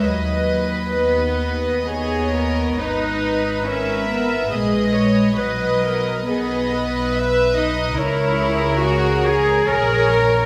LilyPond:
<<
  \new Staff \with { instrumentName = "Violin section" } { \time 3/4 \key gis \minor \tempo 4 = 70 dis''4 dis''2 | dis''4 e''4 dis''4 | dis''4 dis''4 e''8 dis''8 | \key cis \dorian cis''4 cis''4 cis''4 | }
  \new Staff \with { instrumentName = "Viola section" } { \time 3/4 \key gis \minor b'2 cis''4 | b'4 ais'4 gis'8 cis''8 | b'8 ais'8 gis'8 b'4. | \key cis \dorian ais'8 gis'4. cis''4 | }
  \new Staff \with { instrumentName = "Violin section" } { \time 3/4 \key gis \minor b'2 gis'8 ais'8 | b'2. | b'4 b'2 | \key cis \dorian ais'2 gis'8 ais'8 | }
  \new Staff \with { instrumentName = "Cello section" } { \time 3/4 \key gis \minor fis4 b4 b4 | dis'4 cis'8 b8 gis4 | fis4 b4 r8 dis'8 | \key cis \dorian e'4 fis'8 gis'8 ais'4 | }
  \new Staff \with { instrumentName = "Double bass section" } { \clef bass \time 3/4 \key gis \minor dis,2. | gis,,2 ais,,4 | b,,2. | \key cis \dorian cis,2 ais,,4 | }
>>